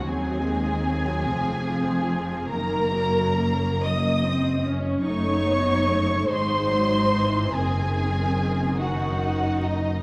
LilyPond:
<<
  \new Staff \with { instrumentName = "Violin section" } { \time 6/8 \key ees \dorian \tempo 4. = 48 aes''2. | bes''4. ees'''4 r8 | \key gis \phrygian cis'''4. bis''4. | gis''4. fis''4 dis''8 | }
  \new Staff \with { instrumentName = "Violin section" } { \time 6/8 \key ees \dorian aes'2. | bes'4. ees''4 r8 | \key gis \phrygian cis''4. bis'4. | gis'4. fis'4 dis'8 | }
  \new Staff \with { instrumentName = "Viola section" } { \time 6/8 \key ees \dorian << { c'2. | bes4. bes8 c'8 des'8 | \key gis \phrygian dis'4. dis'4. | bis4. dis'4. | } \\ { ges8 aes8 ges8 f4. | ees8 ges8 bes2 | a8 b8 a8 gis8 fis8 e8 | dis2. | } >> }
  \new Staff \with { instrumentName = "Cello section" } { \clef bass \time 6/8 \key ees \dorian ees,4. f,4. | ges,2. | \key gis \phrygian fis,4. gis,4. | fis,2. | }
  \new Staff \with { instrumentName = "Double bass section" } { \clef bass \time 6/8 \key ees \dorian ees,4. f,,4. | ges,,2. | \key gis \phrygian fis,,4. gis,,4. | fis,,2. | }
>>